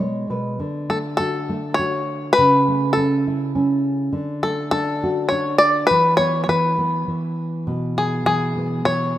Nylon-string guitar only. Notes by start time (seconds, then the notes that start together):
Already playing: B2
0.00 G#3 C#5
0.30 B2 B4
0.60 D3
0.89 A3
1.19 F#4
1.49 A3
1.79 F#4
2.38 C#3
2.68 A3
2.97 C#4
3.27 E4
3.55 C#4
4.13 D3
4.43 A3
4.72 D4
5.04 F#4
5.32 D4
5.91 E3
6.19 B3
6.49 E3
6.78 B3
7.08 E3
7.67 B2
7.97 B3
8.26 E3
8.56 B3
8.86 E3